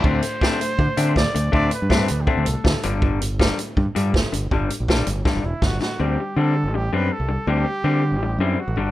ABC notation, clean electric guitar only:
X:1
M:4/4
L:1/8
Q:1/4=162
K:Dmix
V:1 name="Clean electric guitar" clef=bass
[D,A,C] [D,A,] [D,A,C] [D,A,] [D,A,] [D,A,C] [D,A,] [D,A,] | [D,A,C] [D,A,] [D,A,C] [D,A,] [D,A,C] [D,A,] [D,A,] [G,,D,G,] | [G,,D,G,] G,, [G,,D,G,] [G,,D,] [G,,D,] [G,,D,G,] [G,,D,] [G,,D,] | [G,,D,G,] [G,,D,] [G,,D,G,] [G,,D,] [G,,D,G,] [G,,D,] [G,,D,] [G,,D,] |
[D,G,C] [D,G,] [D,G,C] [D,G,] [D,G,] [D,G,C] [D,G,] [D,G,] | [D,G,C] [D,G,] [D,G,C] [D,G,] [D,G,] [D,G,C] [D,G,] [G,,D,G,] |]